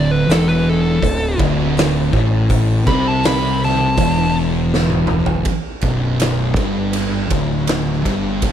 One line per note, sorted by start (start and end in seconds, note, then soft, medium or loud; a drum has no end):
0.00 0.25 D1 medium
0.00 0.27 D2 loud
0.00 0.11 D5 loud
0.11 0.29 B4 medium
0.27 0.99 E1 medium
0.27 1.01 E2 loud
0.27 0.48 A4 medium
0.27 open hi-hat medium
0.32 snare loud
0.49 0.69 B4 medium
0.69 1.39 A4 loud
1.02 1.37 D1 medium
1.02 1.32 D2 medium
1.02 kick medium
1.02 open hi-hat medium
1.39 2.09 D1 loud
1.39 2.12 D2 medium
1.39 kick loud
1.77 snare loud
1.77 open hi-hat medium
2.13 2.83 A1 loud
2.13 2.86 A2 loud
2.13 kick loud
2.49 kick loud
2.49 open hi-hat medium
2.87 3.94 C2 loud
2.87 3.97 C3 loud
2.87 3.08 B5 loud
2.87 kick loud
3.08 3.25 A5 medium
3.23 3.61 B5 medium
3.23 snare loud
3.23 open hi-hat medium
3.63 4.35 A5 medium
3.63 snare soft
3.97 5.42 E1 loud
3.97 5.45 E2 loud
3.97 kick loud
3.97 open hi-hat medium
4.74 snare medium
4.90 high tom medium
5.07 mid tom medium
5.26 floor tom loud
5.45 kick loud
5.45 ride medium
5.81 6.53 B0 medium
5.81 6.56 B1 loud
5.81 kick loud
5.81 ride medium
6.20 snare loud
6.20 ride loud
6.56 7.27 G1 medium
6.56 7.30 G2 loud
6.56 kick loud
6.56 ride medium
6.93 ride medium
7.30 8.01 D1 medium
7.30 8.04 D2 loud
7.30 kick loud
7.30 ride medium
7.67 snare loud
7.67 ride medium
8.05 8.52 G1 loud
8.05 8.52 G2 medium
8.05 kick loud
8.05 ride medium
8.42 kick loud
8.42 ride medium